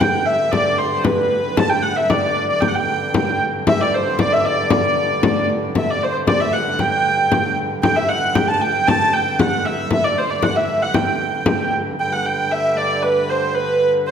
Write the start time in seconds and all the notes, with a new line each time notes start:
Already playing: G2 D3
0.00 G5, frame drum
0.26 E5, frame drum
0.52 D5, frame drum
0.78 C5
1.04 B4, frame drum
1.31 frame drum
1.57 A5, frame drum
1.70 G5
1.82 F#5
1.96 E5
2.10 D5, frame drum
2.36 frame drum
2.49 D5
2.61 G5, frame drum
2.68 F#5
2.75 G5
2.88 frame drum
3.14 frame drum
3.41 frame drum
3.67 G2 D3 E5, frame drum
3.81 D5
3.94 C5
4.19 D5, frame drum
4.33 E5
4.45 D5, frame drum
4.70 D5, frame drum
5.23 frame drum
5.49 frame drum
5.75 E5, frame drum
5.90 D5
6.03 C5
6.27 D5, frame drum
6.40 E5
6.53 F#5, frame drum
6.79 G5, frame drum
7.32 frame drum
7.58 frame drum
7.83 G2 D3 G5, frame drum
7.96 E5
8.09 F#5
8.35 G5, frame drum
8.48 A5
8.61 G5, frame drum
8.87 A5, frame drum
9.13 G5
9.39 F#5, frame drum
9.65 E5, frame drum
9.90 E5, frame drum
10.04 D5
10.18 C5
10.30 D5
10.43 F#5, frame drum
10.56 E5
10.68 frame drum
10.82 F#5
10.94 G5, frame drum
11.46 frame drum
11.72 frame drum
11.97 G2 D3 G5
12.12 F#5
12.25 G5
12.51 E5
12.77 D5
13.03 B4
13.29 C5
13.55 B4
14.07 C5